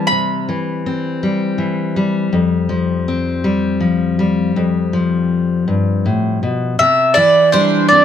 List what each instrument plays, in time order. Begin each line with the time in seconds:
Already playing: steel-string acoustic guitar G3 C4
0.07 mandolin B5
0.11 steel-string acoustic guitar C3
0.49 steel-string acoustic guitar E3
0.86 steel-string acoustic guitar C4
1.23 steel-string acoustic guitar G3
1.58 steel-string acoustic guitar E3
1.96 steel-string acoustic guitar G3
2.33 steel-string acoustic guitar F2
2.69 steel-string acoustic guitar F3
3.08 steel-string acoustic guitar C4
3.44 steel-string acoustic guitar G3
3.80 steel-string acoustic guitar F3
4.19 steel-string acoustic guitar G3
4.56 steel-string acoustic guitar F2
4.93 steel-string acoustic guitar F3
5.68 steel-string acoustic guitar G2
6.06 steel-string acoustic guitar A2
6.43 steel-string acoustic guitar B2
6.79 steel-string acoustic guitar C3, mandolin E5
7.14 steel-string acoustic guitar E3, twelve-string acoustic guitar E4, mandolin D5
7.52 steel-string acoustic guitar G3, twelve-string acoustic guitar D4, mandolin C5
7.89 steel-string acoustic guitar C4, mandolin D5